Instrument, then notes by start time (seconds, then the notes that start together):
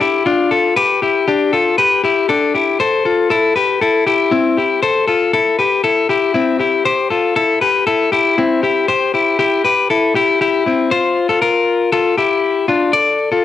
clean electric guitar
0.01 E4 G4
0.26 D4 F4
0.51 F4 A4
0.76 G4 B4
1.02 E4 G4
1.28 D4 G4
1.53 F4 A4
1.78 G4 B4
2.04 E4 G4
2.29 D4 A4
2.54 E4 G4
2.80 A4 C5
3.05 F4 A4
3.30 E4 A4
3.56 G4 B4
3.81 E4 A4
4.06 E4 G4
4.31 C4 E4
4.57 E4 G4
4.83 A4 C5
5.08 F4 A4
5.33 E4 A4
5.59 G4 B4
5.84 E4 A4
6.09 E4 G4
6.34 C4 E4
6.60 E4 G4
6.85 G4 C5
7.10 F4 A4
7.36 E4 A4
7.61 G4 B4
7.87 E4 A4
8.12 E4 G4
8.38 C4 E4
8.63 E4 G4
8.88 G4 C5
9.14 E4 G4
9.39 E4 G4
9.65 G4 B4
9.90 E4 A4
10.15 E4 G4
10.41 E4 G4
10.66 C4 E4
10.91 F4 C5
11.29 F4 A4
11.42 F4 A#4
11.92 F4 A4
12.17 E4 G4
12.68 D4 F4
12.93 A4 D5
13.32 F4 A4